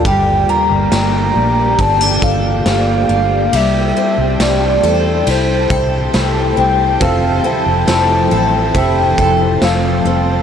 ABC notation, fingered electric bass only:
X:1
M:4/4
L:1/16
Q:1/4=69
K:Gdor
V:1 name="Fingered electric bass" clef=bass
G,,,2 z G,,, G,,,2 B,,,2 G,,,2 G,,,2 G,,,2 G,,,2 | C,,2 z C,, C,,2 E,,2 C,,2 C,,2 C,,2 C,,2 | F,,,2 z F,,, F,,,2 A,,,2 F,,,2 F,,,2 F,,,2 F,,,2 |]